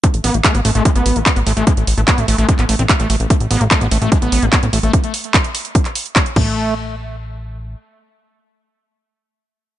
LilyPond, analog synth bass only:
\new Staff \with { instrumentName = "Analog synth bass" } { \clef bass \time 4/4 \key c \major \tempo 4 = 147 r16 a,,16 a,,16 a,,16 r16 a,,16 a,,16 a,,16 r16 a,,16 a,,16 a,,16 r16 a,,16 a,,16 a,,16 | r16 a,,16 a,,16 a,,16 r16 a,,16 a,,16 a,,16 r16 a,,16 a,,16 a,,16 r16 a,,16 a,,16 a,,16 | r16 a,,16 a,,16 a,,16 r16 a,,16 a,,16 a,,16 r16 a,,16 a,,16 a,,16 r16 a,,16 a,,16 a,,16 | r2. r8 a,,8~ |
a,,2. r4 | r1 | }